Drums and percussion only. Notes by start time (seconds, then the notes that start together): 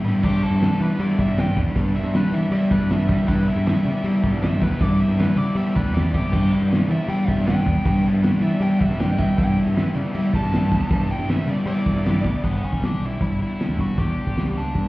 0.04 open hi-hat, shaker
0.23 kick, crash, shaker
0.42 shaker
0.61 snare, open hi-hat, shaker
0.80 shaker
1.00 open hi-hat, shaker
1.09 shaker
1.18 kick, shaker
1.37 snare, open hi-hat, shaker
1.56 kick, shaker
1.76 kick, open hi-hat, shaker
1.94 shaker
2.13 snare, open hi-hat, shaker
2.32 shaker
2.51 open hi-hat, shaker
2.62 shaker
2.71 kick
2.90 snare, open hi-hat, shaker
3.08 kick, shaker
3.27 kick, open hi-hat, shaker
3.47 shaker
3.65 snare, open hi-hat, shaker
3.84 shaker
4.04 open hi-hat, shaker
4.23 kick, shaker
4.42 snare, open hi-hat, shaker
4.61 kick, shaker
4.80 kick, open hi-hat, shaker
4.98 shaker
5.17 snare, open hi-hat, shaker
5.36 shaker
5.45 shaker
5.55 open hi-hat, shaker
5.74 kick, shaker
5.94 snare, open hi-hat, shaker
6.13 kick, shaker
6.22 shaker
6.32 kick, crash, shaker
6.43 shaker
6.52 shaker
6.71 snare, open hi-hat, shaker
6.90 shaker
7.09 open hi-hat, shaker
7.19 shaker
7.28 kick, shaker
7.39 snare
7.47 snare, open hi-hat, shaker
7.66 kick, shaker
7.86 kick, open hi-hat, shaker
7.95 shaker
8.05 shaker
8.23 snare, open hi-hat, shaker
8.62 open hi-hat, shaker
8.81 kick, shaker
8.91 snare
8.99 snare, open hi-hat, shaker
9.18 kick, shaker
9.38 kick, open hi-hat, shaker
9.56 shaker
9.76 snare, open hi-hat, shaker
9.95 shaker
10.14 open hi-hat, shaker
10.24 shaker
10.34 kick, shaker
10.44 snare
10.53 snare, open hi-hat, shaker
10.72 kick, shaker
10.91 kick, open hi-hat, shaker
11.01 shaker
11.10 shaker
11.20 shaker
11.29 snare, open hi-hat, shaker
11.38 shaker
11.48 shaker
11.57 shaker
11.66 open hi-hat, shaker
11.76 shaker
11.85 kick, shaker
11.95 shaker
12.04 snare, open hi-hat, shaker
12.24 kick, shaker
12.34 shaker
12.44 kick, crash
12.73 kick
12.83 snare, open hi-hat
13.21 kick, open hi-hat
13.60 snare, open hi-hat
13.79 kick
13.98 kick, open hi-hat
14.27 kick
14.37 snare, open hi-hat
14.75 kick, open hi-hat